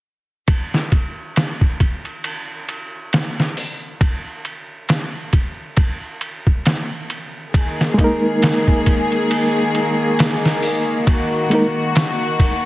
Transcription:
0.48 kick, ride
0.74 snare
0.92 kick, ride
1.36 snare, ride
1.61 kick
1.80 kick, ride
2.05 ride
2.24 ride
2.69 ride
3.13 snare, ride
3.40 snare
3.57 open hi-hat
4.01 kick, ride
4.45 ride
4.89 snare, ride
5.33 kick, ride
5.77 kick, ride
6.21 ride
6.47 kick
6.66 snare, ride
7.10 ride
7.53 D#3 A#3 G#4, kick, ride
7.81 snare
7.94 G#3 A#3
7.98 D#4, kick, ride
8.04 A#4
8.42 snare, ride
8.68 kick
8.86 kick, ride
9.12 ride
9.31 ride
9.75 ride
10.19 snare, ride
10.45 snare
10.63 open hi-hat
11.07 F#4, kick, ride
11.50 G#3 A#3 D#4, ride
11.55 A#4
11.95 snare, ride
12.39 kick, ride

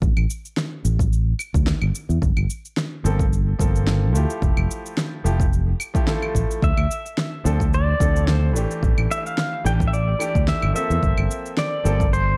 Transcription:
0.02 A1, kick, cabasa
0.17 A1, claves
0.30 cabasa
0.45 cabasa
0.57 snare, cabasa
0.84 A1, cabasa
0.99 kick, cabasa
1.13 cabasa
1.39 cabasa, claves
1.54 D2, kick, cabasa
1.67 snare, cabasa
1.82 G1, claves
1.95 cabasa
2.09 E2, cabasa
2.22 G1, kick, cabasa
2.37 G1, claves
2.50 cabasa
2.65 cabasa
2.77 snare, cabasa
3.04 G1 F3 A#3 C4 A4, cabasa
3.19 kick, cabasa
3.33 cabasa
3.59 G1 F3 A#3 C4 A4, kick, cabasa
3.76 cabasa
3.87 snare, cabasa
4.13 D2 F3 A3 E4, cabasa
4.17 G4
4.30 cabasa
4.42 F1, kick, cabasa
4.57 F1, claves
4.71 cabasa
4.86 cabasa
4.97 snare, cabasa
5.24 F1 F3 A3 E4 G4, cabasa
5.40 kick, cabasa
5.53 cabasa
5.80 cabasa, claves
5.94 F3 A3 E4 G4, kick, cabasa
6.06 F3 A3 E4 A4, snare, cabasa
6.22 claves
6.35 A1, kick, cabasa
6.51 cabasa
6.62 D2 E5, kick, cabasa
6.77 D2, claves
6.91 cabasa
7.06 cabasa
7.18 snare, cabasa
7.44 D2 F3 C4 D4 A4, cabasa
7.60 kick, cabasa
7.74 D5, cabasa
7.99 D2 F3 C4 D4 A4, kick, cabasa
8.16 cabasa
8.28 C5, snare, cabasa
8.53 A1 E3 A3 D4, cabasa
8.57 G4
8.71 cabasa
8.83 A1, kick, cabasa
8.98 A1, claves
9.11 E5, cabasa
9.26 F5, cabasa
9.38 snare, cabasa
9.64 A1 E3 A3 D4 G4 G5, cabasa
9.80 kick, cabasa
9.88 E5
9.93 D5, cabasa
10.19 E3 A3 D4 G4, cabasa, claves
10.35 D2, kick, cabasa
10.48 E5, snare, cabasa
10.62 G1, claves
10.73 F3 A#3 C4 E5, cabasa
10.77 A4
10.90 E2, cabasa
11.03 G1, kick, cabasa
11.18 G1, claves
11.31 cabasa
11.46 cabasa
11.57 D5, snare, cabasa
11.84 G1 F3 A#3 C4 A4, cabasa
12.00 kick, cabasa
12.13 C5, cabasa

